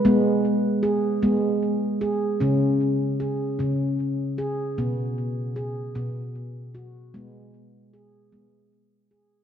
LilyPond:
<<
  \new Staff \with { instrumentName = "Handpan" } { \time 6/8 \key gis \minor \tempo 4. = 51 b4 gis'8 b4 gis'8 | cis'4 gis'8 cis'4 gis'8 | b4 gis'8 b4 fis'8 | b4 gis'8 b4 gis'8 | }
  \new Staff \with { instrumentName = "Handpan" } { \clef bass \time 6/8 \key gis \minor gis4. gis4. | cis4. cis4. | b,4. b,4. | gis4. gis4. | }
>>